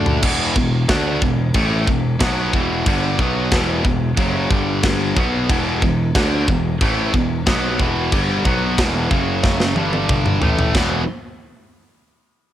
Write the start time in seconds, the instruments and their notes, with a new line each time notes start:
Already playing: picked electric bass D2, distorted electric guitar D3 A3 D4
0.06 floor tom
0.22 picked electric bass E1, distorted electric guitar E2 B2 E3, kick, crash
0.56 picked electric bass E1, distorted electric guitar E2 B2, kick
0.88 picked electric bass D2, distorted electric guitar D3 A3 D4, kick, snare, crash
1.21 picked electric bass E1, distorted electric guitar E2 B2, kick
1.54 picked electric bass A1, distorted electric guitar A2 E3 A3, kick, crash
1.87 picked electric bass E1, distorted electric guitar E2 B2, kick
2.20 picked electric bass B1, distorted electric guitar B2 F#3 B3, kick, snare, crash
2.53 picked electric bass E1, distorted electric guitar E2 B2 E3, kick
2.86 picked electric bass G1, distorted electric guitar G2 D3 G3, kick, crash
3.19 picked electric bass B1, distorted electric guitar B2 F#3 B3, kick
3.52 picked electric bass E1, distorted electric guitar E2 B2 E3, kick, snare, crash
3.84 picked electric bass E1, distorted electric guitar E2 B2, kick
4.17 picked electric bass F#1, distorted electric guitar F#2 C#3 F#3, kick, crash
4.50 picked electric bass G1, distorted electric guitar G2 D3 G3, kick
4.83 kick, snare, crash
5.16 picked electric bass B1, distorted electric guitar B2 F#3 B3, kick
5.49 picked electric bass E1, distorted electric guitar E2 B2 E3, kick, crash
5.82 picked electric bass E1, distorted electric guitar E2 B2, kick
6.15 picked electric bass D2, distorted electric guitar D3 A3 D4, kick, snare, crash
6.48 picked electric bass E1, distorted electric guitar E2 B2, kick
6.81 picked electric bass A1, distorted electric guitar A2 E3 A3, kick, crash
7.13 picked electric bass E1, distorted electric guitar E2 B2, kick
7.46 picked electric bass B1, distorted electric guitar B2 F#3 B3, kick, snare, crash
7.79 picked electric bass E1, distorted electric guitar E2 B2 E3, kick
8.12 picked electric bass G1, distorted electric guitar G2 D3 G3, kick, crash
8.45 picked electric bass B1, distorted electric guitar B2 F#3 B3, kick
8.78 picked electric bass E1, distorted electric guitar E2 B2 E3, kick, snare, crash
9.10 picked electric bass F#1, distorted electric guitar F#2 C#3 F#3, kick
9.43 kick, snare
9.60 snare
9.75 picked electric bass G1, distorted electric guitar G2 D3 G3, high tom
9.93 high tom
10.09 kick, mid tom
10.26 mid tom
10.41 picked electric bass A1, distorted electric guitar A2 E3 A3, floor tom
10.59 floor tom
10.74 picked electric bass E1, distorted electric guitar E2 B2 E3, kick, snare, china